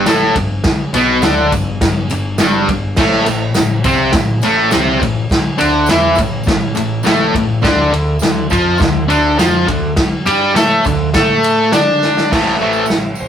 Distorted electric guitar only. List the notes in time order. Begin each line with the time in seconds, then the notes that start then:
0.06 A2 A3
0.37 G2
0.94 B2 B3
1.23 D3 D4
1.53 G2
1.82 G2
2.11 G2
2.39 G2 G3
2.70 G2
2.98 A2 A3
3.27 A2
3.56 A2
3.85 C3 C4
4.14 A2
4.43 A2 A3
4.71 C3 C4
5.00 A2
5.58 D3 D4
5.89 E3 E4
6.17 A2
6.47 A2
6.75 A2
7.04 A2 A3
7.36 A2
7.62 D3 D4
7.92 D3
8.22 D3
8.50 F3 F4
8.79 D3
9.08 D3 D4
9.38 F3 F4
9.68 D3
10.26 G3 G4
10.55 A3 A4
10.85 D3
11.14 A3 A4
11.73 D4 D5
12.31 A2 E3 A3
12.61 A2 E3 A3